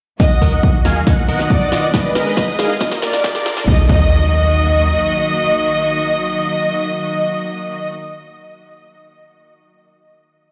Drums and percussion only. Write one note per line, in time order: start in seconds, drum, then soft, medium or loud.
0.20 kick loud
0.20 snare soft
0.20 closed hi-hat medium
0.31 closed hi-hat soft
0.42 kick medium
0.42 open hi-hat loud
0.63 kick loud
0.63 closed hi-hat medium
0.74 closed hi-hat soft
0.85 snare medium
0.85 open hi-hat loud
0.96 closed hi-hat soft
1.07 kick loud
1.07 snare medium
1.07 closed hi-hat medium
1.18 closed hi-hat soft
1.28 open hi-hat loud
1.39 snare medium
1.39 closed hi-hat soft
1.50 kick loud
1.50 closed hi-hat medium
1.61 closed hi-hat soft
1.72 snare medium
1.72 open hi-hat loud
1.83 closed hi-hat soft
1.94 kick loud
1.94 snare medium
1.94 closed hi-hat medium
2.05 closed hi-hat soft
2.15 snare medium
2.15 open hi-hat loud
2.37 kick loud
2.37 snare medium
2.37 closed hi-hat medium
2.48 closed hi-hat soft
2.59 snare medium
2.59 open hi-hat loud
2.70 closed hi-hat soft
2.81 kick loud
2.81 snare medium
2.81 closed hi-hat medium
2.91 snare medium
2.91 closed hi-hat soft
3.02 snare medium
3.02 open hi-hat loud
3.13 snare medium
3.13 closed hi-hat soft
3.24 kick loud
3.24 snare loud
3.24 closed hi-hat medium
3.35 snare medium
3.35 closed hi-hat soft
3.46 snare loud
3.46 open hi-hat loud
3.57 snare medium
3.68 kick loud
3.89 kick loud